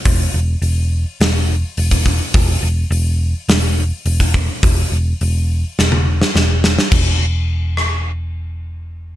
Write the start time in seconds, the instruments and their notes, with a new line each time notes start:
0.05 picked electric bass E1, kick, open hi-hat
0.34 picked electric bass E1
0.62 picked electric bass E1, open hi-hat
1.20 picked electric bass E1, snare, open hi-hat
1.77 picked electric bass E1, open hi-hat
1.91 kick
2.06 kick
2.34 picked electric bass E1, kick, open hi-hat
2.63 picked electric bass E1
2.90 picked electric bass E1, open hi-hat
3.48 picked electric bass E1, snare, open hi-hat
4.06 picked electric bass E1, open hi-hat
4.20 kick
4.34 kick
4.63 picked electric bass E1, kick, open hi-hat
4.92 picked electric bass E1
5.21 picked electric bass E1, open hi-hat
5.79 picked electric bass E1, snare
5.92 high tom
6.22 snare
6.35 picked electric bass E1, snare
6.64 snare
6.79 snare
6.91 picked electric bass E1, kick, crash
7.77 cross-stick